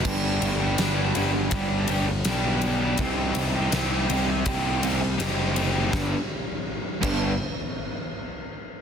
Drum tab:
CC |x-------|--------|---x----|
RD |-xxxxxxx|xxxxxxxx|--------|
SD |--o---o-|--o---o-|o-------|
BD |o---o---|o---o---|o--o----|